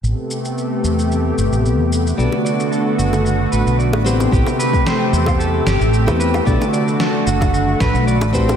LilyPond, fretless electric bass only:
\new Staff \with { instrumentName = "Fretless electric bass" } { \clef bass \time 4/4 \key a \dorian \tempo 4 = 112 a,,16 r4 r16 e,8. r16 g,,16 a,,8 e,8 r16 | b,,16 r4 r16 fis,,8. r16 a,,16 b,,8 a,,8 r16 | a,,16 r4 r16 e,8. r16 g,,16 a,,8 e,8 r16 | b,,16 r4 r16 fis,,8. r16 a,,16 b,,8 a,,8 r16 | }